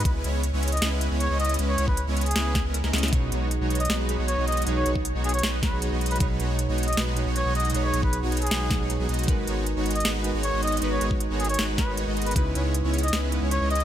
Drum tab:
HH |x---x---x---xxxxx---x---x---xxxx|x---x---x---xxxxx---x---x---xxxx|x---x---x---xxxx----x---x---xxxx|x---x---x---xxxxx---x---x---xxxx|
SD |----------------o---------------|----------------o---o-----o-o-o-|----------------o---------------|----------------o---o-----------|
BD |o-------------------------------|------o-------------o-----------|o-------------------------------|------o-------------o-----------|

HH |x---x---x---xxxxx---x---x---xxxx|x---x---x---xxxxx---x---x---xxxx|x---x---x---xxxxx---x---x---xxxx|x---x---x---xxxxx---x---x---xxxx|
SD |----------------o---------------|----------------o---o-----------|----------------o---------------|----------------o---o-----------|
BD |o-------------------------------|------o-------------o-----------|o-------------------------------|------o-------------o-----------|

HH |x---x---x---xxxxx---x---x---xxx-|
SD |----------------o---------------|
BD |o-------------------------------|